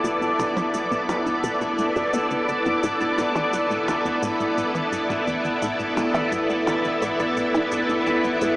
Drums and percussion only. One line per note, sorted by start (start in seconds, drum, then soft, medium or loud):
0.04 cabasa medium
0.22 cabasa soft
0.39 percussion blips medium
0.39 cabasa medium
0.57 percussion blips soft
0.57 cabasa soft
0.74 cabasa medium
0.92 cabasa soft
1.09 percussion blips medium
1.09 cabasa medium
1.26 cabasa soft
1.44 cabasa medium
1.61 cabasa soft
1.78 cabasa medium
1.96 cabasa soft
2.13 cabasa medium
2.31 cabasa soft
2.49 cabasa soft
2.66 cabasa soft
2.83 cabasa medium
3.01 cabasa soft
3.18 percussion blips medium
3.18 cabasa medium
3.36 percussion blips medium
3.36 cabasa soft
3.53 cabasa medium
3.71 cabasa soft
3.88 percussion blips medium
3.88 cabasa medium
4.05 cabasa soft
4.23 cabasa medium
4.40 cabasa soft
4.58 cabasa medium
4.75 cabasa soft
4.93 cabasa medium
5.10 percussion blips soft
5.10 cabasa soft
5.27 cabasa soft
5.45 cabasa soft
5.62 cabasa medium
5.80 cabasa soft
5.97 percussion blips medium
5.97 cabasa medium
6.14 percussion blips medium
6.14 cabasa soft
6.32 cabasa medium
6.50 cabasa soft
6.67 percussion blips medium
6.67 cabasa medium
6.85 cabasa soft
7.02 cabasa medium
7.19 cabasa soft
7.37 cabasa medium
7.54 cabasa soft
7.72 cabasa medium
7.89 cabasa soft
8.07 cabasa soft
8.24 cabasa soft
8.41 cabasa medium